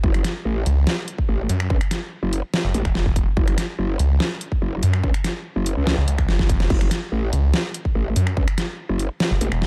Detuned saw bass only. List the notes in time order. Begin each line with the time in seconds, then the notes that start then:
0.66 C#2
1.49 F#2
2.64 F#1
2.85 E1
3.99 C#2
4.83 F#2
5.98 C#2
6.08 C#2
6.29 F#1
7.33 C#2
8.16 F#2
9.31 F#1
9.52 E1